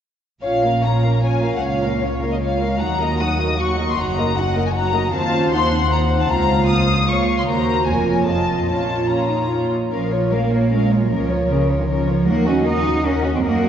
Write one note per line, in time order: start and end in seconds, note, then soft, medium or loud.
0.42 1.59 A#1 soft
0.42 1.59 A#2 soft
0.42 0.62 C#4 soft
0.42 0.62 F4 soft
0.42 0.61 C#5 soft
0.42 0.80 F5 medium
0.63 0.84 A#3 soft
0.63 0.83 C#4 soft
0.63 0.83 A#4 soft
0.63 0.83 F5 soft
0.83 1.03 C#4 soft
0.83 1.04 F4 soft
0.83 1.03 C#5 soft
0.83 1.23 A#5 medium
1.03 1.24 A#3 soft
1.03 1.22 C#4 soft
1.03 1.23 A#4 soft
1.03 1.24 F5 soft
1.22 1.42 C#4 soft
1.22 1.42 F4 soft
1.22 1.41 C#5 soft
1.22 1.53 G#5 medium
1.42 1.63 A#3 soft
1.42 1.62 C#4 soft
1.42 1.62 A#4 soft
1.42 1.62 F5 soft
1.54 1.63 F#5 soft
1.61 2.78 C#2 soft
1.61 1.81 C#4 soft
1.61 1.81 F4 soft
1.61 1.80 C#5 soft
1.61 2.02 F5 medium
1.81 2.02 A#3 soft
1.81 2.01 C#4 soft
1.81 2.01 A#4 soft
1.81 2.02 F5 soft
2.01 2.21 C#4 soft
2.01 2.21 F4 soft
2.01 2.21 C#5 soft
2.01 2.31 C#5 medium
2.20 2.41 A#3 soft
2.20 2.40 C#4 soft
2.20 2.41 A#4 soft
2.20 2.40 F5 soft
2.32 2.36 D#5 soft
2.40 2.60 C#4 soft
2.40 2.60 F4 soft
2.40 2.59 C#5 soft
2.40 2.80 F5 medium
2.60 2.81 A#3 soft
2.60 2.81 C#4 soft
2.60 2.80 A#4 soft
2.60 2.80 F5 soft
2.79 3.98 D#2 soft
2.79 3.98 D#2 medium
2.79 2.99 F#3 soft
2.79 2.99 D#4 soft
2.79 2.98 F#4 soft
2.79 2.99 F#5 soft
2.79 3.20 A#5 medium
3.00 3.20 A#3 soft
3.00 3.20 F#4 soft
3.00 3.20 A#4 soft
3.00 3.20 D#5 soft
3.20 3.40 F#3 soft
3.20 3.40 D#4 soft
3.20 3.40 F#4 soft
3.20 3.40 F#5 soft
3.20 3.59 D#6 medium
3.39 3.59 A#3 soft
3.39 3.59 F#4 soft
3.39 3.59 A#4 soft
3.39 3.59 D#5 soft
3.58 3.77 F#3 soft
3.58 3.77 D#4 soft
3.58 3.77 F#4 soft
3.58 3.77 F#5 soft
3.58 3.88 C#6 medium
3.78 3.98 A#3 soft
3.78 3.98 F#4 soft
3.78 3.98 A#4 soft
3.78 3.98 D#5 soft
3.90 3.99 C6 medium
3.98 5.11 F#1 soft
3.98 5.12 F#2 medium
3.98 4.16 F#3 soft
3.98 4.16 D#4 soft
3.98 4.16 F#4 soft
3.98 4.16 F#5 soft
3.98 4.37 A#5 medium
4.17 4.37 A#3 soft
4.17 4.37 F#4 soft
4.17 4.36 A#4 soft
4.17 4.37 D#5 soft
4.36 4.56 F#3 soft
4.36 4.56 D#4 soft
4.36 4.56 F#4 soft
4.36 4.56 F#5 soft
4.36 4.67 F#5 medium
4.55 4.75 A#3 soft
4.55 4.75 F#4 soft
4.55 4.75 A#4 soft
4.55 4.75 D#5 soft
4.66 4.70 G#5 medium
4.73 4.93 F#3 soft
4.73 4.93 D#4 soft
4.73 4.92 F#4 soft
4.73 4.92 F#5 soft
4.73 5.13 A#5 medium
4.94 5.14 A#3 soft
4.94 5.14 F#4 soft
4.94 5.14 A#4 soft
4.94 5.14 D#5 soft
5.13 6.26 D#2 soft
5.13 6.26 D#2 medium
5.13 5.32 C4 soft
5.13 5.50 F4 soft
5.13 5.87 C5 medium
5.13 5.50 F5 soft
5.13 5.52 A5 medium
5.33 5.53 C#4 medium
5.52 5.72 D#4 medium
5.52 6.30 F#5 soft
5.52 5.90 C6 medium
5.72 5.90 C4 medium
5.90 6.68 C4 soft
5.90 6.29 D#4 soft
5.90 7.06 C5 soft
5.90 6.00 A#5 medium
6.20 6.30 A5 medium
6.29 7.46 C#2 medium
6.29 6.49 F4 soft
6.29 7.07 F5 soft
6.29 6.69 A#5 medium
6.50 7.08 F4 soft
6.69 7.08 A#3 medium
6.69 7.08 D#6 medium
7.08 7.47 A#3 soft
7.08 7.48 F4 soft
7.08 7.48 C#5 soft
7.08 7.47 F5 soft
7.08 7.38 C#6 medium
7.38 7.42 C6 medium
7.47 7.85 D#2 medium
7.47 7.85 D#2 soft
7.47 7.85 A#3 soft
7.47 7.85 F#4 soft
7.47 7.85 A#4 soft
7.47 7.85 C5 soft
7.47 7.86 A#5 medium
7.86 8.26 F1 soft
7.86 8.27 F2 medium
7.86 8.26 A#3 soft
7.86 8.26 F4 soft
7.86 8.26 A#4 soft
7.86 8.27 C#5 soft
7.86 8.26 G#5 medium
8.27 8.67 F1 medium
8.27 8.67 F2 soft
8.27 8.68 C4 soft
8.27 8.67 F4 soft
8.27 8.68 D#5 soft
8.27 8.66 A5 medium
8.67 9.69 A#1 soft
8.67 9.69 A#2 soft
8.67 9.08 C#4 soft
8.67 9.08 F4 soft
8.67 9.09 F4 soft
8.67 9.08 C#5 soft
8.67 9.08 A5 medium
9.09 9.29 C#4 soft
9.09 9.70 F4 soft
9.09 9.70 C#5 soft
9.09 9.71 A#5 soft
9.30 9.51 D#4 soft
9.50 9.71 F4 soft
9.72 9.92 D#4 soft
9.92 11.07 A#1 medium
9.92 10.29 F3 medium
9.92 10.10 C#4 soft
9.92 10.10 A#4 soft
9.92 10.10 F5 soft
10.11 10.32 F4 soft
10.11 10.32 C#5 soft
10.31 10.72 A#3 medium
10.31 10.52 C#4 soft
10.31 10.51 A#4 soft
10.31 10.52 F5 soft
10.52 10.72 F4 soft
10.52 10.72 C#5 soft
10.71 11.02 G#3 medium
10.71 10.90 C#4 soft
10.71 10.90 A#4 soft
10.71 10.90 F5 soft
10.91 11.11 F4 soft
10.91 11.10 C#5 soft
10.91 11.11 C#5 soft
11.02 11.11 F#3 medium
11.11 12.28 C#2 medium
11.11 11.50 F3 medium
11.11 11.30 C#4 soft
11.11 11.29 A#4 soft
11.11 11.30 C#5 soft
11.30 11.51 F4 soft
11.30 11.51 A#4 soft
11.30 11.50 C#5 soft
11.50 11.79 C#3 medium
11.50 11.70 C#4 soft
11.50 11.70 A#4 soft
11.50 11.70 C#5 soft
11.69 11.89 F4 soft
11.69 11.90 A#4 soft
11.69 11.89 C#5 soft
11.80 11.90 D#3 medium
11.89 12.27 F3 medium
11.89 12.08 C#4 soft
11.89 12.07 A#4 soft
11.89 12.08 C#5 soft
12.08 12.28 F4 soft
12.08 12.28 A#4 soft
12.08 12.28 C#5 soft
12.27 13.44 D#2 medium
12.27 12.47 A#3 medium
12.27 12.46 D#4 soft
12.27 12.46 A#4 soft
12.27 12.46 F#5 soft
12.47 12.67 C#4 medium
12.47 12.66 F#4 soft
12.47 12.67 F#4 soft
12.47 12.66 D#5 soft
12.66 12.85 D#4 soft
12.66 13.04 D#4 medium
12.66 12.86 A#4 soft
12.66 12.86 F#5 soft
12.85 13.05 F#4 soft
12.85 13.05 D#5 soft
13.04 13.34 C#4 medium
13.04 13.23 D#4 soft
13.04 13.23 A#4 soft
13.04 13.23 F#5 soft
13.24 13.43 F#4 soft
13.24 13.44 F#4 soft
13.24 13.44 D#5 soft
13.34 13.38 C4 medium
13.43 13.69 F#2 medium
13.43 13.69 A#3 medium
13.43 13.62 D#4 soft
13.43 13.62 A#4 soft
13.43 13.62 F#5 medium
13.63 13.69 F#4 soft
13.63 13.69 D#5 soft